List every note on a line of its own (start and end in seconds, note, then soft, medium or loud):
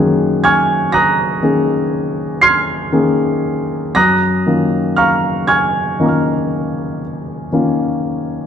0.00 3.96 F#2 medium
0.00 1.39 D#3 soft
0.00 1.39 A#3 soft
0.00 1.40 C#4 soft
0.00 1.40 G#4 soft
0.00 0.41 F#5 medium
0.00 0.41 C6 medium
0.00 0.41 D#6 medium
0.00 0.44 F#6 medium
0.44 0.91 G#5 medium
0.44 0.91 C#6 medium
0.44 0.91 F6 medium
0.44 0.94 G#6 medium
0.92 2.38 A#5 medium
0.92 2.38 D#6 medium
0.92 2.38 F#6 medium
0.92 2.41 A#6 medium
1.43 2.88 D#3 soft
1.43 2.88 A#3 soft
1.43 2.89 C#4 soft
1.43 2.89 G#4 soft
2.41 3.92 C6 medium
2.41 3.92 F6 medium
2.41 3.92 G#6 medium
2.41 3.95 C7 loud
2.92 3.91 D#3 soft
2.92 3.92 A#3 soft
2.92 3.91 C#4 soft
2.92 3.92 G#4 soft
3.95 4.45 F#2 medium
3.95 4.93 A#5 medium
3.95 4.93 D#6 medium
3.95 4.93 F#6 medium
3.95 4.96 A#6 loud
4.46 5.95 D#3 soft
4.46 5.95 A#3 soft
4.46 5.96 C#4 soft
4.46 5.96 F4 soft
4.96 5.44 F5 medium
4.96 5.44 A#5 medium
4.96 5.44 C#6 medium
4.96 5.47 F6 medium
5.47 6.99 G#5 medium
5.47 6.04 C#6 medium
5.47 6.07 F6 medium
5.47 7.02 G#6 medium
6.00 7.49 D#3 soft
6.00 7.49 A#3 soft
6.00 7.49 C#4 soft
6.00 7.49 F4 soft
6.00 8.47 D#5 soft
6.00 8.47 A#5 soft
6.06 8.47 C#6 soft
6.06 8.47 F6 soft
7.52 8.47 D#3 soft
7.52 8.47 A#3 soft
7.52 8.47 C#4 soft
7.52 8.47 F4 soft